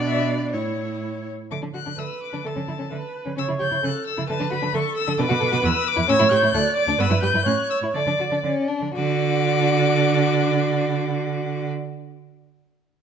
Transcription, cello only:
Already playing: B2
0.53 A2
1.51 D3
1.63 D3
1.74 D3
1.87 D3
1.98 D3
2.33 D3
2.44 D3
2.57 D3
2.68 D3
2.80 D3
2.91 D3
3.26 D3
3.38 C#3
3.49 C#3
3.61 C#3
3.72 C#3
3.84 C#3
4.18 C#3
4.30 D3
4.41 D3
4.52 D3
4.63 D3
4.74 D3
5.08 D3
5.19 B2
5.30 B2
5.42 B2
5.53 B2
5.64 E2
5.98 E2
6.09 A2
6.21 A2
6.31 A2
6.43 A2
6.54 D2
6.88 D2
6.99 G2
7.10 G2
7.22 G2
7.33 G2
7.45 A2
7.81 A2
7.94 D3
8.07 D3
8.19 D3
8.31 D3
8.43 D3
8.82 D3
8.94 D3

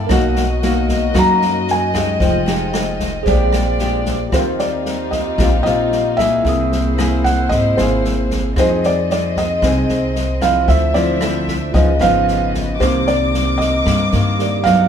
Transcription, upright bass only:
0.09 B1
1.15 F#2
2.20 F1
3.26 A#1
4.32 D#2
5.38 A#1
5.66 A#1
6.45 C2
7.51 G#1
7.78 G#1
8.56 F2
9.62 C2
9.88 C2
10.68 D2
11.74 C#2
12.01 G#1
12.80 C2
13.86 G2
14.13 G2

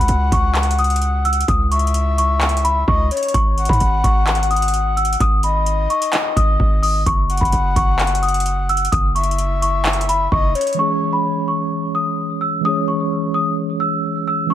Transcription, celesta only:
Already playing: B5
0.33 C#6
0.79 D#6
1.25 E6
1.49 D#6
1.71 C#6
2.18 C#6
2.64 B5
2.88 C#6
3.34 C#6
3.69 B5
4.04 C#6
4.51 D#6
4.97 E6
5.21 D#6
5.44 B5
5.90 C#6
6.37 D#6
6.83 D#6
7.07 C#6
7.41 B5
7.76 C#6
8.22 D#6
8.69 E6
8.92 D#6
9.15 C#6
9.62 C#6
10.09 B5
10.32 C#6
10.79 C#6
11.13 B5
11.48 C#6
11.95 D#6
12.41 E6
12.65 D#6
12.88 C#6
13.34 D#6
13.80 E6
14.28 E6
14.50 C#6

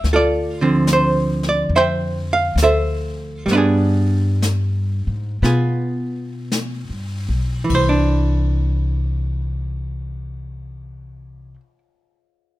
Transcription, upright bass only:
0.04 D2
1.69 F2
2.56 D2
3.46 G2
5.07 G#2
5.42 B2
6.89 G2
7.29 B1
7.69 C2

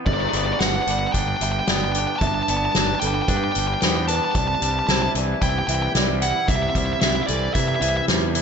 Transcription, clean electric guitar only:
0.06 G2
0.34 B3
0.60 D4
0.88 G3
1.14 D4
1.42 G3
1.68 B3
1.95 D4
2.22 G2
2.48 B3
2.75 D4
3.02 G3
3.29 D4
3.56 G3
3.83 B3
4.09 D4
4.36 C3
4.62 G3
4.89 E4
5.15 E3
5.42 E4
5.68 E3
5.95 G3
6.22 E4
6.49 C3
6.76 G3
7.02 E4
7.29 E3
7.55 E4
7.82 E3
8.08 G3
8.35 E4

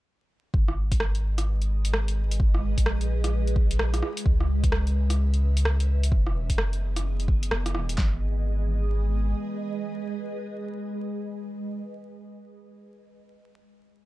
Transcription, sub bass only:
0.54 G#1
2.78 A#1
4.25 C#2
6.12 E1
6.50 F#1
7.51 F#1
7.75 E1
7.98 G#1

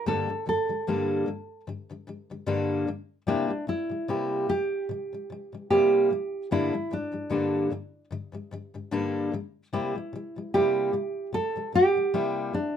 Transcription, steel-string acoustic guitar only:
0.06 G2 D3 G3 A#3 D4 A4
0.28 G2 D3 G3
0.46 G2 D3 G3
0.68 G2 D3 G3
0.87 G2 D3 G3 A#3 D4 A4
1.26 G2 D3 G3
1.67 G2 D3 G3
1.90 G2 D3 G3
2.07 G2 D3 G3
2.30 G2 D3 G3
2.46 G2 D3 G3 A#3 D4 A4
2.87 G2 D3 G3
3.27 C3 G3 A#3 E4 G4
3.48 C3 G3
3.67 C3 G3
3.90 C3 G3
4.08 C3 G3 A#3 E4 G4
4.49 C3 G3
4.89 C3 G3
5.13 C3 G3
5.30 C3 G3
5.53 C3 G3
5.71 C3 G3 A#3 E4 G4
6.10 C3 G3
6.51 G2 D3 G3 A#3 D4 A4
6.73 G2 D3 G3
6.91 G2 D3 G3
7.12 G2 D3 G3
7.30 G2 D3 G3 A#3 D4 A4
7.70 G2 D3 G3
8.11 G2 D3 G3
8.32 G2 D3 G3
8.51 G2 D3 G3
8.74 G2 D3 G3
8.91 G2 D3 G3 A#3 D4 A4
9.32 G2 D3 G3
9.73 C3 G3 A#3 E4 G4
9.96 C3 G3
10.13 C3 G3
10.36 C3 G3
10.54 C3 G3 A#3 E4 G4
10.93 C3 G3
11.33 C3 G3
11.56 C3 G3
11.72 C3 G3
11.95 C3 G3
12.14 C3 G3 A#3 E4 G4
12.53 C3 G3

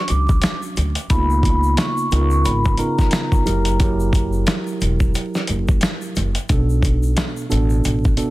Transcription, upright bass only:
0.10 C#2
0.77 D2
1.11 C#2
2.12 C#2
2.46 G#1
3.47 F#1
4.82 E1
5.49 F#1
6.17 F#1
6.50 B1
7.52 A1
7.85 A1

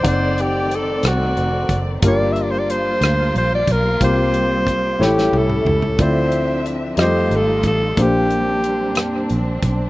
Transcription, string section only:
Already playing: D5
0.05 D#3 A3 C4
2.01 F3 G3 A#3 F4
4.01 C4
4.99 A3 C#4 E4
5.97 F3 C4 D4 E5
6.98 G3 A3 D#4 F4
7.97 G3 A#3 C4 D4

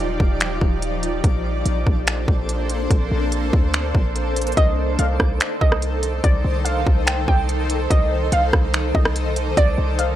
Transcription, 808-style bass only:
Already playing: D#1
0.20 D#1
0.61 D#1
1.24 A#1
1.66 A#1
1.87 A#1
2.28 A#1
2.91 A#1
3.11 A#1
3.53 D2
3.95 A#1
4.57 C2
4.99 C2
5.20 C2
5.61 C2
6.24 C2
6.45 C2
6.87 C2
7.28 C2
7.91 C2
8.32 C2
8.53 C2
8.95 C2
9.57 C2
9.78 C2

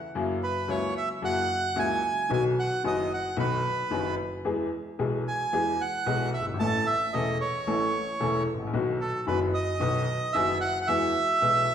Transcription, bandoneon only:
0.44 B4
0.70 C#5
0.97 E5
1.25 F#5
1.79 G#5
2.33 G#5
2.59 F#5
2.87 D#5
3.14 F#5
3.40 B4
5.28 G#5
5.81 F#5
6.34 E5
6.59 A5
6.87 E5
7.13 D#5
7.41 C#5
9.01 A4
9.28 B4
9.54 D#5
10.33 E5
10.61 F#5
10.82 F#5
10.87 E5

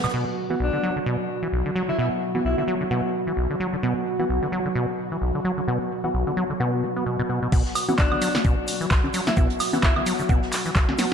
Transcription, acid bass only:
0.04 B2
0.14 B2
0.50 E3
0.60 B1
0.73 D3
0.83 F#3
0.96 D3
1.06 B2
1.43 E3
1.52 B1
1.66 D3
1.76 F#3
1.89 D3
1.99 B2
2.35 E3
2.45 B1
2.58 D3
2.68 F#3
2.81 D3
2.91 B2
3.27 E3
3.37 B1
3.50 D3
3.60 F#3
3.73 D3
3.83 B2
4.19 E3
4.29 B1
4.42 D3
4.52 F#3
4.65 D3
4.75 B2
5.12 E3
5.22 B1
5.35 D3
5.45 F#3
5.58 D3
5.68 B2
6.04 E3
6.14 B1
6.27 D3
6.37 F#3
6.50 D3
6.60 B2
6.83 B3
6.96 B3
7.06 B2
7.19 B2
7.29 B2
7.42 B2
7.52 B2
7.89 E3
7.99 B1
8.12 D3
8.22 F#3
8.35 D3
8.45 B2
8.81 E3
8.91 B1
9.04 D3
9.14 F#3
9.27 D3
9.37 B2
9.73 E3
9.83 B1
9.96 D3
10.06 F#3
10.20 D3
10.29 B2
10.66 E3
10.76 B1
10.89 D3
10.99 F#3

